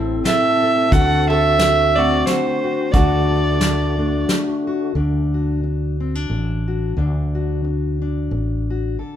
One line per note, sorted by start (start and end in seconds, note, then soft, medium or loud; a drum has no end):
0.00 0.20 A1 medium
0.00 0.91 A2 medium
0.00 0.88 C3 medium
0.00 0.88 C4 medium
0.00 2.89 C4 medium
0.00 0.88 E4 medium
0.00 0.62 A4 medium
0.00 0.88 A4 medium
0.00 0.89 C5 medium
0.25 0.89 A4 medium
0.25 0.94 E5 medium
0.25 snare medium
0.25 closed hi-hat soft
0.62 0.91 A4 medium
0.91 2.22 D2 medium
0.91 2.93 D3 medium
0.91 4.92 D3 medium
0.91 1.60 F#4 medium
0.91 4.92 F#4 medium
0.91 1.29 A4 medium
0.91 1.28 F#5 loud
0.91 kick medium
0.91 closed hi-hat soft
1.29 1.93 A4 medium
1.29 2.91 C5 medium
1.29 1.97 E5 loud
1.59 2.64 F#4 medium
1.59 snare medium
1.59 closed hi-hat medium
1.96 2.93 A3 medium
1.96 2.94 C4 medium
1.96 2.27 F#4 medium
1.96 2.27 D5 medium
2.26 2.93 F#4 medium
2.26 2.93 C5 medium
2.26 snare medium
2.26 closed hi-hat soft
2.64 2.95 F#4 medium
2.92 4.24 D2 medium
2.92 4.95 D3 medium
2.92 4.93 A3 medium
2.92 3.97 A3 medium
2.92 3.98 D4 medium
2.92 4.28 F#4 medium
2.92 3.61 F#4 medium
2.92 4.27 D5 medium
2.92 kick medium
2.92 closed hi-hat soft
2.96 3.30 A4 medium
3.31 6.97 A4 medium
3.61 4.66 F#4 medium
3.61 snare medium
3.61 closed hi-hat soft
3.98 4.92 A3 medium
3.98 4.92 D4 soft
4.29 snare medium
4.29 closed hi-hat soft
4.67 4.93 F#4 medium
4.95 6.26 D2 medium
4.95 5.63 D3 medium
4.95 6.00 D4 soft
5.34 6.66 F#4 soft
5.63 muted steel-string acoustic guitar stroke medium
6.00 6.15 C4 soft
6.15 6.97 D4 soft
6.30 6.94 A1 medium
6.30 muted steel-string acoustic guitar stroke medium
6.68 6.94 F#4 soft
6.97 8.28 D2 medium
6.97 7.63 D3 medium
6.97 8.00 D4 medium
7.35 8.69 F#4 soft
7.64 muted steel-string acoustic guitar stroke medium
8.02 8.96 D4 soft
8.31 8.96 A1 medium
8.31 muted steel-string acoustic guitar stroke medium
8.70 8.96 F#4 soft
8.99 9.16 D3 soft
8.99 9.16 A4 soft